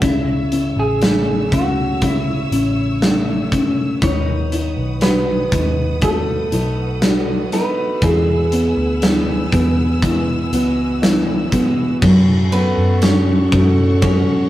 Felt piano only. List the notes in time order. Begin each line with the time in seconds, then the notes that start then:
0.02 C#3
0.52 C#4
1.02 A3
1.52 C#4
2.02 C#3
2.52 C#4
3.02 A3
3.53 C#4
4.02 D#3
4.53 D#4
5.02 F#4
5.52 D#4
6.02 F#4
6.52 D#4
7.02 F#4
7.53 D#4
8.02 E3
8.52 B3
9.02 E3
9.52 B3
10.02 E3
10.52 B3
11.02 E3 C#5
11.52 B3
12.02 F#3
12.52 F#3
13.02 F#3
13.53 F#3
14.02 F#3